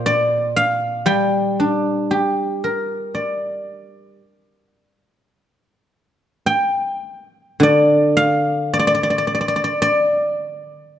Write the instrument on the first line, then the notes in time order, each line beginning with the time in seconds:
guzheng
Already playing: A#2 A#4 C5 F5 G5 A#5 C6
0.06 D5
0.56 F5
1.06 G3 G5
1.60 D4
2.11 G4
2.64 A#4
3.15 D5
6.46 G5
7.60 D3 D5
8.17 F5
8.74 D5
8.79 D5
8.87 D5
8.95 D5
9.03 D5
9.10 D5
9.18 D5
9.27 D5
9.35 D5
9.41 D5
9.48 D5
9.56 D5
9.64 D5
9.82 D5